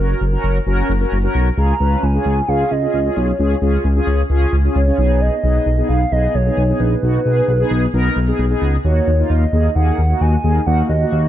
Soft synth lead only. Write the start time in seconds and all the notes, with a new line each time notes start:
Already playing: A#4
1.58 A#5
2.03 G#5
2.48 F5
2.71 D#5
3.16 C#5
4.75 C#5
5.21 D#5
5.89 F5
6.12 D#5
6.35 C#5
6.80 B4
8.85 C#5
9.30 D#5
9.75 F#5
10.21 G#5
10.67 F#5
10.89 D#5
11.12 D#5